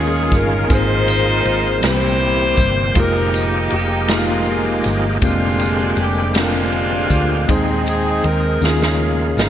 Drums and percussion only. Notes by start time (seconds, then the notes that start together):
0.32 kick, ride, tambourine
0.70 kick, ride, tambourine
1.08 ride, tambourine
1.45 ride
1.83 snare, ride, tambourine
2.20 ride
2.57 kick, ride, tambourine
2.95 kick, ride, tambourine
3.34 ride, tambourine
3.70 ride
4.08 snare, ride, tambourine
4.46 ride
4.84 ride, tambourine
5.22 kick, ride, tambourine
5.59 ride, tambourine
5.97 ride
6.34 snare, ride, tambourine
6.72 ride
7.10 kick, ride, tambourine
7.49 kick, ride, tambourine
7.86 ride, tambourine
8.24 ride
8.62 snare, tambourine
8.83 snare
9.38 snare, tambourine